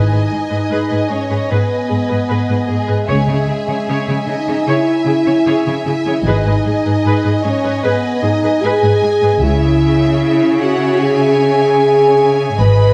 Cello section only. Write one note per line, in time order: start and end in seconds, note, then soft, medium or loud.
0.12 0.20 G#2 soft
0.32 0.40 G#2 soft
0.51 0.59 G#2 soft
0.70 0.78 G#2 soft
0.90 0.98 G#2 soft
1.10 1.18 G#2 soft
1.30 1.38 G#2 soft
1.51 1.59 G#2 medium
1.91 1.99 G#2 soft
2.10 2.18 G#2 soft
2.31 2.39 G#2 soft
2.50 2.58 G#2 soft
2.69 2.77 G#2 soft
2.89 2.97 G#2 soft
3.08 3.16 C#3 medium
3.28 3.36 C#3 soft
3.48 3.56 C#3 soft
3.67 3.75 C#3 soft
3.88 3.96 C#3 medium
4.08 4.16 C#3 soft
4.27 4.35 C#3 soft
4.47 4.55 C#3 soft
4.66 4.74 C#3 medium
5.06 5.14 C#3 soft
5.27 5.35 C#3 soft
5.46 5.54 C#3 medium
5.66 5.74 C#3 soft
5.86 5.94 C#3 soft
6.06 6.14 C#3 soft
6.26 6.34 G#2 medium
6.45 6.53 G#2 soft
6.66 6.74 G#2 soft
6.86 6.94 G#2 soft
7.06 7.14 G#2 medium
7.26 7.33 G#2 soft
7.45 7.53 G#2 soft
7.64 7.72 G#2 soft
7.83 7.91 G#2 medium
8.23 8.31 G#2 soft
8.44 8.52 G#2 soft
8.63 8.71 G#2 medium
8.83 8.91 G#2 soft
9.03 9.11 G#2 soft
9.22 9.30 G#2 soft
9.41 12.55 C#3 medium
12.59 12.94 G#2 medium